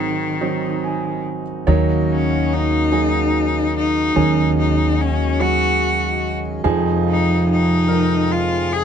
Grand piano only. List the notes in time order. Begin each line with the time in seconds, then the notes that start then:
Already playing: G#1 G#2 F#3 C4 G#4
0.41 F#3 C4 D#4
0.84 G#5
1.67 D#2 D#3 F#3 D#4 C#5
2.92 F#3 D#4 G#4
4.16 D#2 D#3 F#3 C#4 G#4
5.40 F#3 C#4 G#4
6.64 F1 F2 F3 D#4 G#4
7.88 F3 D#4 A#4